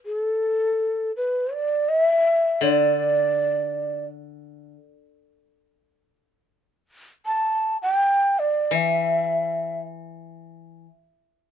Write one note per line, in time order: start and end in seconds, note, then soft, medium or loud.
0.06 1.12 A4 medium
1.17 1.55 B4 medium
1.54 1.91 D5 medium
1.89 2.64 E5 medium
2.61 4.74 D3 soft
2.61 4.05 D5 medium
7.26 7.77 A5 medium
7.82 8.41 G5 medium
8.39 8.76 D5 medium
8.71 10.85 E3 soft
8.71 9.80 E5 medium